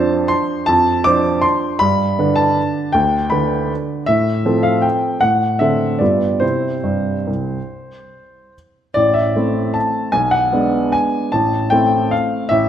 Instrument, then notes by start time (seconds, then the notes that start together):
upright piano
Already playing: F2 F3 D4 C5 A5
0.28 C6
0.66 F2 A5
1.04 F3 D4 C5 D6
1.42 C6
1.79 G2 B5
2.19 D3 D4 B4
2.36 A5
2.92 D2 G5
3.30 D3 D4 B4 B5
4.06 A2 E5
4.45 F3 C4 A4
4.63 F5
4.82 G5
5.21 A2 F#5
5.59 D3 C4 A4 E5
5.99 G2 G3 B3 F4 D5
6.40 C3 C4 E4 C5
6.84 G2
7.27 C2
8.94 A1 D5
9.14 E5
9.36 A3 C4 E4
9.74 A5
10.12 B1 G#5
10.31 F#5
10.52 G#3 B3 D4
10.92 G#5
11.32 A1 A5
11.70 A3 C4 E4 G5
12.11 F5
12.49 A1 E5